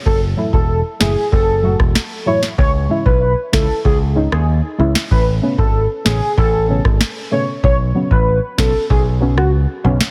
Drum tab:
SD |------o----ro--o|------o----r---o|------o----ro---|------o----r---o|
BD |o--o----o--o----|o--o--o-o-------|o--o----o--o----|o--o--o-o-------|